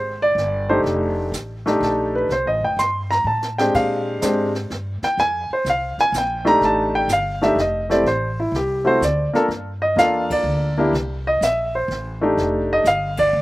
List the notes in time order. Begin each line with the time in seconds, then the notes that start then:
Already playing: G#1 C5
0.22 D5
0.35 G1, snare
0.69 A3 D4 D#4 G4 C5
0.84 F1, brush sweep, snare
1.32 A1, snare, hi-hat pedal
1.66 A3 D4 D#4 G4, snare
1.80 A#1 A4, snare
2.15 B4
2.29 C2 C5, brush sweep, snare
2.45 A1 D#5
2.61 F1 G5
2.77 G2 C6, snare, hi-hat pedal
3.11 A#5, snare
3.24 A2 A5
3.42 snare
3.58 G#3 C4 D4 G4 G5, snare
3.74 A#2 F5, brush sweep, kick, snare, ride
4.21 G#2 G#3 C4 D4 G4, snare, hi-hat pedal
4.55 snare
4.70 G2, snare
5.02 G5, muted upright bass stroke, snare
5.17 F2 G#5, brush sweep, snare
5.50 C5, muted upright bass stroke
5.65 C2, snare, hi-hat pedal
5.70 F5
5.98 G#5, muted upright bass stroke, snare
6.12 A#1, snare, hi-hat pedal
6.18 G5
6.45 A3 D4 D#4 G4 A#5, snare
6.61 A1, brush sweep, snare
6.65 A5
6.95 G5
7.08 G1, snare, hi-hat pedal
7.13 F5
7.42 A3 D4 D#4 G4 E5, snare
7.56 F1, snare
7.60 D#5
7.90 A3 C4 E4 G4 D5, snare
8.04 A1 C5, brush sweep, snare
8.40 E4
8.52 C2, snare
8.56 G4
8.85 A3 C4 E4 F#4 C5
9.01 D2 D5, snare, hi-hat pedal
9.33 A#3 D4 F4 A4 A#4, muted upright bass stroke, snare
9.48 G2, brush sweep, snare
9.82 D#5
9.96 E2 A#3 D4 F4 A4 F5, snare, hi-hat pedal
10.30 D5, kick, ride
10.43 D2
10.78 A#3 D4 E4 G4
10.93 C2, brush sweep, snare
11.27 D#5
11.41 A#1 E5, snare, hi-hat pedal
11.75 C5
11.88 A1, snare
12.21 A3 D4 D#4 G4
12.37 F1, brush sweep, snare
12.73 D#5
12.84 G1 F5, snare, hi-hat pedal
13.17 D5, kick, ride
13.33 D2